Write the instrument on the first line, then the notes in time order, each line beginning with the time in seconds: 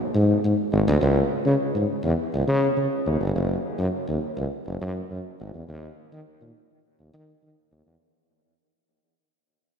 tuba
0.15 G#2
0.44 G#2
0.73 G#1
0.88 D2
1.01 C#2
1.46 C#3
1.75 G#2
2.04 E2
2.34 C#2
2.48 C#3
2.77 C#3
3.06 D#2
3.21 G1
3.35 F#1
3.79 F#2
4.08 D#2
4.37 C#2
4.67 F#1
4.81 F#2
5.10 F#2
5.40 G#1
5.54 E2
5.69 D#2
6.13 D#3
6.41 A#2
7.00 D#2
7.14 D#3
7.43 D#3
7.72 D#2
7.86 E2